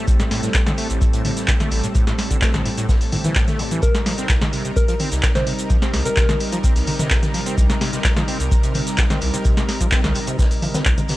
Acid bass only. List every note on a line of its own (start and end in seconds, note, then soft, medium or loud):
0.08 0.18 A1 medium
0.20 0.23 A2 medium
0.31 0.41 A2 medium
0.43 0.49 A2 medium
0.66 0.73 D3 medium
0.78 0.88 A3 medium
0.90 0.99 A1 medium
1.01 1.05 A2 medium
1.13 1.23 A2 medium
1.25 1.31 A2 medium
1.48 1.55 D3 medium
1.60 1.70 A3 medium
1.72 1.82 A1 medium
1.84 1.88 A2 medium
1.95 2.05 A2 medium
2.07 2.14 A2 medium
2.31 2.37 D3 medium
2.42 2.52 A3 medium
2.54 2.64 A1 medium
2.66 2.69 A2 medium
2.78 2.87 A2 medium
2.89 2.96 A2 medium
3.12 3.16 A2 loud
3.25 3.34 E3 medium
3.36 3.46 A2 medium
3.48 3.61 A3 medium
3.59 3.63 G2 medium
3.71 3.81 E3 loud
4.06 4.13 F3 medium
4.18 4.28 C4 medium
4.30 4.39 C2 medium
4.42 4.45 C3 medium
4.53 4.63 C3 medium
4.65 4.71 C3 medium
4.88 4.95 F3 medium
5.00 5.10 C4 medium
5.12 5.21 C2 medium
5.35 5.45 C3 medium
5.47 5.53 C3 medium
5.70 5.77 F3 medium
5.82 5.92 C4 medium
5.94 6.03 C2 medium
6.06 6.09 C3 medium
6.17 6.27 C3 medium
6.29 6.35 C3 medium
6.52 6.59 F3 medium
6.64 6.74 C4 medium
6.76 6.85 C2 medium
6.87 6.91 C3 medium
6.99 7.09 C3 medium
7.11 7.17 C3 medium
7.34 7.41 F3 medium
7.46 7.56 C4 medium
7.58 7.68 C2 medium
7.70 7.73 C3 medium
7.81 7.91 C3 medium
7.93 7.99 C3 medium
8.17 8.23 F3 medium
8.28 8.38 C4 medium
8.40 8.49 C2 medium
8.51 8.55 C3 medium
8.63 8.73 C3 medium
8.75 8.81 C3 medium
8.98 9.05 F3 medium
9.10 9.20 C4 medium
9.22 9.32 C2 medium
9.34 9.38 C3 medium
9.45 9.55 C3 medium
9.57 9.63 C3 medium
9.81 9.87 F3 medium
9.92 10.02 C4 medium
10.04 10.14 C2 medium
10.15 10.19 C3 medium
10.28 10.37 C3 medium
10.39 10.46 C3 medium
10.62 10.69 F3 medium
10.74 10.84 C4 medium
10.86 10.96 C2 medium
10.98 11.02 C3 medium
11.09 11.17 C3 medium